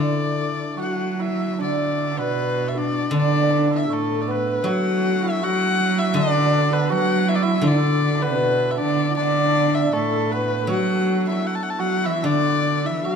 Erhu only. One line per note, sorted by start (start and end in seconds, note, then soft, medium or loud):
0.00 0.75 D5 medium
0.81 1.11 F#5 medium
1.11 1.23 F#5 medium
1.22 1.60 E5 medium
1.62 2.21 D5 medium
2.19 2.70 B4 medium
2.68 2.80 E5 soft
2.78 3.15 D5 medium
3.18 3.69 D5 medium
3.75 3.95 E5 medium
3.93 4.23 A4 medium
4.21 4.32 D5 soft
4.31 4.69 B4 medium
4.68 5.25 F#5 medium
5.23 5.45 E5 medium
5.44 6.00 F#5 medium
5.99 6.17 E5 medium
6.15 6.74 D5 medium
6.73 6.93 B4 medium
6.92 7.30 F#5 medium
7.29 7.37 E5 medium
7.36 7.44 D5 medium
7.42 7.69 E5 medium
7.67 8.24 D5 medium
8.22 8.72 B4 medium
8.71 8.79 E5 medium
8.77 9.16 D5 medium
9.16 9.76 D5 medium
9.74 9.95 E5 medium
9.93 10.33 A4 medium
10.31 10.69 B4 medium
10.71 11.24 F#5 medium
11.28 11.48 E5 medium
11.47 11.57 F#5 medium
11.55 11.64 A5 medium
11.63 11.71 F#5 medium
11.70 11.81 A5 medium
11.80 12.07 F#5 medium
12.06 12.27 E5 medium
12.25 12.87 D5 medium
12.86 13.06 E5 medium
13.04 13.16 F#5 medium